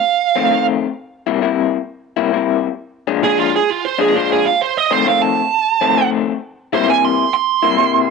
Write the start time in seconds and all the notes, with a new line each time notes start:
Already playing: F5
0.36 F2 D#3 A3 C4
0.50 F2 D#3 A3 C4
1.27 C3 G3 A#3 E4
1.41 C3 G3 A#3 E4
2.17 C3 G3 A#3 E4
2.32 C3 G3 A#3 E4
3.07 A#2 F3 G#3 D4
3.22 A#2 F3 G#3 D4 G#4
3.39 F4
3.56 G#4
3.70 F4
3.85 C5
3.99 A#2 F3 G#3 D4 G#4
4.13 A#2 F3 G#3 D4 C5
4.32 G#4
4.46 F5
4.61 C5
4.77 D#5
4.91 F2 D#3 A3 C4 C5
5.05 F2 D#3 A3 C4 F5
5.22 A5
5.81 F2 D#3 A3 C4
5.96 F2 D#3 A3 C4
6.73 C3 G3 A#3 E4 C5
6.87 C3 G3 A#3 E4 G#5
7.05 C6
7.34 C6
7.63 C3 G3 A#3 E4
7.78 C3 G3 A#3 E4